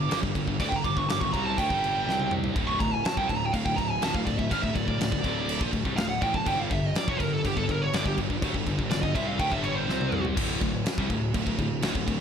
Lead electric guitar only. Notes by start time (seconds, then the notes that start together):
Already playing: D6
0.60 D5
0.69 G5
0.76 A#5
0.85 D6
0.97 C#6
1.10 D6
1.21 C#6
1.33 A#5
1.44 A5
1.58 G5
2.67 C#6
2.80 A#5
2.94 G#5
3.05 A5
3.17 G5
3.29 A5
3.36 A#5
3.46 G5
3.52 F5
3.65 G5
3.77 A#5
3.90 G#5
4.03 A5
4.14 F5
4.27 D5
4.39 E5
4.51 F5
4.62 E5
4.75 D5
4.88 D5
5.97 F5
6.09 F#5
6.22 G5
6.35 A5
6.47 G5
6.60 F5
6.72 E5
6.86 D#5
6.97 D5
7.08 C#5
7.20 A#4
7.33 A4
7.46 G4
7.58 A4
7.71 A#4
7.82 C#5
7.94 D5
8.06 G4
8.91 D5
9.02 D#5
9.15 E5
9.29 F5
9.39 G5
9.51 E5
9.63 C#5
9.76 C5